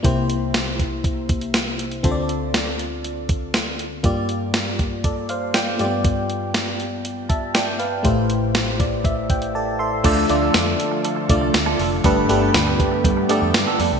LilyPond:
<<
  \new Staff \with { instrumentName = "FM electric piano" } { \time 4/4 \key g \dorian \tempo 4 = 120 << { r1 | r1 | r2 <a' d''>8 <c'' f''>8 <d'' g''>4 | r2 r8 <e'' a''>8 <d'' g''>8 <b' f''>8~ |
<b' f''>8 r4 d''8 e''8 g''8 <a' d'' a''>8 <a' e'' c'''>8~ | \key d \dorian <a' e'' c'''>8 r2. r8 | r1 | } \\ { <bes e' g' c''>1 | <c' f' a' c'' d''>1 | <bes f' g' d''>2.~ <bes f' g' d''>8 <a b f' g' d''>8~ | <a b f' g' d''>2~ <a b f' g' d''>8 r4. |
<a e' g' c''>1 | <a d' f' d''>8 <a d' f' d''>4. r8 <a d' f' d''>4. | <a d' g' b'>8 <a d' g' b'>4. r8 <a d' g' d''>4. | } >> }
  \new Staff \with { instrumentName = "FM electric piano" } { \clef bass \time 4/4 \key g \dorian <c, c>1 | <d, d>1 | g,2.~ g,8 g,8~ | g,2.~ g,8 r8 |
<a,, a,>1 | \key d \dorian d4. r2 r8 | g,4. r2 r8 | }
  \new Staff \with { instrumentName = "Clean electric guitar" } { \time 4/4 \key g \dorian r1 | r1 | r1 | r1 |
r1 | \key d \dorian <d' f' a'>8 <d' f' a'>16 <d' f' a'>16 r2 r16 <d' f' a'>16 <d' f' a'>16 r16 | <b d' a'>8 <b d' a'>16 <b d' a'>16 r4. <b d' a'>8 r16 <b d' a'>16 <b d' a'>8 | }
  \new Staff \with { instrumentName = "Analog synth pad" } { \time 4/4 \key g \dorian << { r1 | r1 | r1 | r1 |
r1 | \key d \dorian <f f' a'>1 | <g b g'>1 | } \\ { r1 | r1 | r1 | r1 |
r1 | <d a>1~ | <d a>1 | } >> }
  \new Staff \with { instrumentName = "Fingered electric bass" } { \clef bass \time 4/4 \key g \dorian r1 | r1 | r1 | r1 |
r1 | \key d \dorian d,8 d,8 f,8 r4 c,8 d,8 f,,8 | g,,8 g,,8 d,8 r8 g,8 r16 f,16 g,16 r16 f,16 c,16 | }
  \new DrumStaff \with { instrumentName = "Drums" } \drummode { \time 4/4 <hh bd>8 hh8 <hh sn>8 <hh bd>8 <hh bd>8 <hh bd>16 hh16 <hh sn>8 hh16 hh16 | <hh bd>8 hh8 <hh sn>8 hh8 hh8 <hh bd>8 <hh sn>8 hh8 | <hh bd>8 hh8 <hh sn>8 <hh bd>8 <hh bd>8 hh8 <hh sn>8 hh8 | <hh bd>8 hh8 <hh sn>8 hh8 hh8 <hh bd>8 <hh sn>8 hh8 |
<hh bd>8 hh8 <hh sn>8 <hh bd>8 <hh bd>8 <hh bd>16 hh16 r4 | <cymc hh bd>8 hh8 <hh sn tamb>8 hh8 hh8 <hh bd>8 <hh sn tamb>8 hho8 | <hh bd>8 hh8 <hh sn tamb>8 <hh bd>8 <hh bd>8 hh8 <hh sn tamb>8 hho8 | }
>>